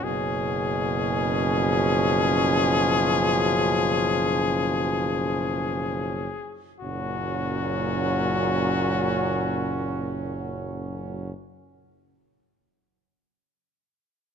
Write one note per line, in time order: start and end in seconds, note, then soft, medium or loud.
0.00 6.30 F#1 loud
0.00 1.10 F#3 medium
0.00 6.63 G#4 loud
0.04 6.34 B2 medium
0.04 6.31 C#4 medium
1.45 6.31 F3 loud
6.80 11.32 F#1 medium
6.80 11.32 A#2 medium
6.80 11.32 F#3 medium
6.80 11.33 C#4 medium
6.80 11.30 F#4 loud